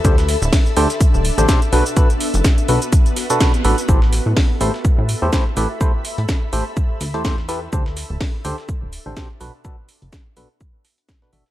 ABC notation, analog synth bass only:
X:1
M:4/4
L:1/16
Q:"Swing 16ths" 1/4=125
K:Ador
V:1 name="Analog synth bass" clef=bass
D,,3 D,,, z2 D,, z2 D,,, z A,,, z2 B,,, z | z3 F,,, z2 B,,, z6 z A,,, z | A,,,3 A,, z2 A,,, z2 A,, z E,, z2 A,,, z | z3 A,, z2 A,,, z3 D,, E,,4- E,, |
D,,3 D,,, z2 D,, z2 D,,, z A,,, z2 B,,, z | z3 F,,, z2 B,,, z6 z A,,, z |]